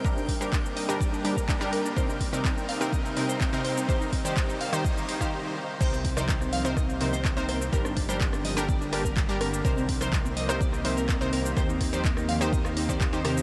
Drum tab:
CC |----------------|----------------|----------------|x---------------|
HH |--o---o---o---o-|--o---o---o---o-|--o---o---o-----|--o---o---o---o-|
SH |xx-xxx-xxx-xxx-x|xx-xxx-xxx-xxx-x|xx-xxx-xxx-x----|xx-xxx-xxx-xxx-x|
CP |----x-------x---|----x-------x---|----x-----------|----x-------x---|
SD |----------------|----------------|----------------|-r-r-r--r-r-r-r-|
CG |----------------|----------------|----------------|-o-O-oO-o-Oo--o-|
BD |o-o-o---o--oo---|o-o-o---o---o---|o-o-o---o--o----|o-o-o---o---o---|

CC |----------------|----------------|----------------|
HH |--o---o---o---o-|--o---o---o---o-|--o---o---o---o-|
SH |xx-xxx-xxx-xxx-x|xx-xxx-xxx-xxx-x|xx-xxx-xxx-xxx-x|
CP |----x-------x---|----x-------x---|----x-------x---|
SD |-r-r-r-r--r-r-r-|r--r-r-r-r--r-r-|r-r--r-r-r-r--r-|
CG |-o-O-oO-o--o--o-|-o-O-oO-o-Oo--o-|-o-O-oO-o--o--o-|
BD |o-o-o---o--oo---|o-o-o---o---o---|o-o-o---o--oo---|